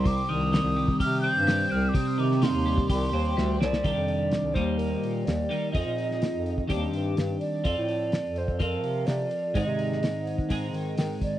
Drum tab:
HH |o---o---o---o---|o---o---o-------|o-o-o-o-o-o-o-o-|o-o-o-o-o-o-o-o-|
SD |----o-------o---|---oo-------o-oo|----o-------o---|---oo-------o---|
BD |o------oo-------|o------oo-------|o-----o---------|o------oo-------|

HH |o-o-o-o-o-o-o-o-|o-o-o-o-o-o-o-o-|
SD |----o-------o---|---oo-------o---|
BD |o------oo-------|o------oo-----o-|